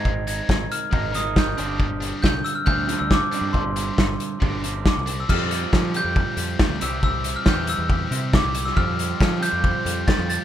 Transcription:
<<
  \new Staff \with { instrumentName = "Glockenspiel" } { \time 4/4 \key f \lydian \tempo 4 = 138 aes'''8 aes'''4 f'''4 ees'''8 g'''8. r16 | r4 g'''8 e'''16 f'''16 g'''8. e'''16 d'''4 | c'''2. d'''8. e'''16 | f'''4. g'''2 e'''8 |
e'''8. f'''16 g'''8 e'''4. d'''8. e'''16 | f'''4. g'''4. a'''8 a'''8 | }
  \new Staff \with { instrumentName = "Analog synth pad" } { \time 4/4 \key f \lydian r1 | r1 | r1 | r1 |
r1 | <f' g' c'' g''>1 | }
  \new Staff \with { instrumentName = "Clean electric guitar" } { \time 4/4 \key f \lydian <aes c' ees' bes'>2 <aes c' ees' bes'>8 <aes c' ees' bes'>4 <g, d g c' d' g'>8~ | <g, d g c' d' g'>2 <g, d g c' d' g'>8 <g, d g c' d' g'>4 <g, d g c' d' g'>8~ | <g, d g c' d' g'>2 <g, d g c' d' g'>8 <g, d g c' d' g'>4 r8 | <f g c' g'>4. <f g c' g'>2 <c e g c' g'>8~ |
<c e g c' g'>4 <c e g c' g'>2~ <c e g c' g'>8 r8 | <f g c' g'>4. <f g c' g'>2~ <f g c' g'>8 | }
  \new Staff \with { instrumentName = "Distorted electric guitar" } { \time 4/4 \key f \lydian <aes c' ees'>8 <aes c' ees'>8 r4 <aes c' ees'>8 r4 <g c' d'>8 | r8 <g c' d'>8 r4 <g c' d'>8 r4 <g c' d'>8 | r8 <g c' d'>8 r4 <g c' d'>8 r4 <g c' d'>8 | <f c' f' g'>2~ <f c' f' g'>8 <f c' f' g'>8 <f c' f' g'>8 <g c' e' g'>8~ |
<g c' e' g'>2 <g c' e' g'>8 <g c' e' g'>4 r8 | <f c' f' g'>2~ <f c' f' g'>8 <f c' f' g'>8 <f c' f' g'>4 | }
  \new Staff \with { instrumentName = "Fingered electric bass" } { \clef bass \time 4/4 \key f \lydian aes,,4 aes,,8 r8 aes,,4~ aes,,16 aes,,16 g,,8~ | g,,4 c,8 r8 d,8. d,8 r8 g,16 | g,,4 g,,8 r8 g,,4~ g,,16 c,8. | f,4 f8. f,8 r16 f,8 r16 d,16 c,8~ |
c,4 e,8. e,8. c8. c,8. | f,4 f8. f,8 r16 f,8 r16 f,8 r16 | }
  \new DrumStaff \with { instrumentName = "Drums" } \drummode { \time 4/4 bd8 hh8 <bd sn>8 hh8 bd8 <hh sn>8 <bd sn>8 hh8 | bd8 hh8 <bd sn>8 hh8 bd8 <hh sn>8 <bd sn>8 hh8 | bd8 hh8 <bd sn>8 hh8 bd8 hh8 <bd sn>8 hh8 | <cymc bd>8 hh8 <bd sn>8 hh8 bd8 hh8 <bd sn>8 hh8 |
bd8 hh8 <bd sn>8 hh8 bd8 hh8 <bd sn>8 hh16 sn16 | bd8 hh8 <bd sn>8 hh8 bd8 hh8 <bd sn>8 hh8 | }
>>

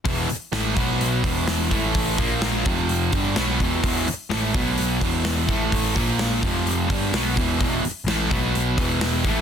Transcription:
<<
  \new Staff \with { instrumentName = "Distorted electric guitar" } { \clef bass \time 4/4 \key e \minor \tempo 4 = 127 <e, b, e>8 r8 <a, e a>8 <b, fis b>4 <e, b, e>4 <a, e a>8~ | <a, e a>8 <ais, eis ais>4 <f, c f>4 <g, d g>8 <b, fis b>8 <e, b, e>8 | <e, b, e>8 r8 <a, e a>8 <b, fis b>4 <e, b, e>4 <a, e a>8~ | <a, e a>8 <ais, eis ais>4 <f, c f>4 <g, d g>8 <b, fis b>8 <e, b, e>8 |
<e, b, e>8 r8 <a, e a>8 <b, fis b>4 <e, b, e>4 <a, e a>8 | }
  \new Staff \with { instrumentName = "Distorted electric guitar" } { \clef bass \time 4/4 \key e \minor <e, b, e>8 r8 <a, e a>8 <b, fis b>4 <e, b, e>4 <a, e a>8~ | <a, e a>8 <ais, eis ais>4 <f, c f>4 <g, d g>8 <b, fis b>8 <e, b, e>8 | <e, b, e>8 r8 <a, e a>8 <b, fis b>4 <e, b, e>4 <a, e a>8~ | <a, e a>8 <ais, eis ais>4 <f, c f>4 <g, d g>8 <b, fis b>8 <e, b, e>8 |
<e, b, e>8 r8 <a, e a>8 <b, fis b>4 <e, b, e>4 <a, e a>8 | }
  \new Staff \with { instrumentName = "Picked electric bass" } { \clef bass \time 4/4 \key e \minor e,,8 r8 a,,8 b,,4 e,,4 a,,8~ | a,,8 ais,,4 f,,4 g,,8 b,,8 e,,8 | e,,8 r8 a,,8 b,,4 e,,4 a,,8~ | a,,8 ais,,4 f,,4 g,,8 b,,8 e,,8 |
e,,8 r8 a,,8 b,,4 e,,4 a,,8 | }
  \new DrumStaff \with { instrumentName = "Drums" } \drummode { \time 4/4 <hho bd>8 hho8 <hho sn>8 <hho bd>8 hho8 <hho bd>8 <hho sn>8 <hho bd>8 | <hho bd>8 <hho bd>8 <hho sn>8 <hho bd>8 hho8 <hho bd>8 <hho sn>8 <hho bd>8 | <hho bd>8 hho8 <hho sn>8 <hho bd>8 hho8 <hho bd>8 <hho sn>8 <hho bd>8 | <hho bd>8 <hho bd>8 <hho sn>8 <hho bd>8 hho8 <hho bd>8 <hho sn>8 <hho bd>8 |
<hho bd>8 hho8 <hho sn>8 <hho bd>8 hho8 <hho bd>8 <hho sn>8 <hho bd>8 | }
>>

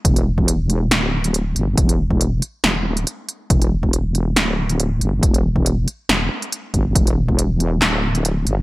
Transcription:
<<
  \new Staff \with { instrumentName = "Wobble bass" } { \clef bass \time 4/4 \key e \minor \tempo 4 = 139 e,,2 d,,4. g,,8 | e,,4. r8 e,,8 d,,8 r4 | e,,2 d,,4. g,,8 | e,,4. r8 e,,8 r4 g,,8 |
e,,2 d,,4. g,,8 | }
  \new DrumStaff \with { instrumentName = "Drums" } \drummode { \time 4/4 <hh bd>16 hh8 bd16 hh8 hh8 <hh sn>8. hh16 hh8 hh8 | <hh bd>16 hh8 bd16 hh8 hh8 <hh sn>8. hh16 hh8 hh8 | <hh bd>16 hh8 bd16 hh8 hh8 <hh sn>8. hh16 hh8 hh8 | <hh bd>16 hh8 bd16 hh8 hh8 <hh sn>8. hh16 hh8 <hh bd>8 |
<hh bd>16 hh8 bd16 hh8 hh8 <hc hh sn>8. hh16 hh8 hh8 | }
>>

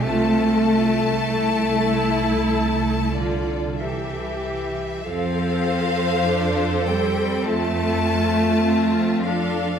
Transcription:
<<
  \new Staff \with { instrumentName = "Violin section" } { \time 4/4 \key f \major \tempo 4 = 48 a''2~ a''8 d''8 e''4 | f''4. g''8 a''4. f''8 | }
  \new Staff \with { instrumentName = "Violin section" } { \time 4/4 \key f \major a'2.~ a'8 r8 | c''2 a'4 f'8 a'8 | }
  \new Staff \with { instrumentName = "Viola section" } { \time 4/4 \key f \major << { f'4 e'4. f'8 g'4 | a'4 a'4 f'2 | } \\ { c'4 r2. | c'4 d'8 c'4. c'8 d'8 | } >> }
  \new Staff \with { instrumentName = "Cello section" } { \clef bass \time 4/4 \key f \major a2~ a8 d8 e4 | f4. g8 a4. f8 | }
  \new Staff \with { instrumentName = "Double bass section" } { \clef bass \time 4/4 \key f \major c,1 | f,1 | }
>>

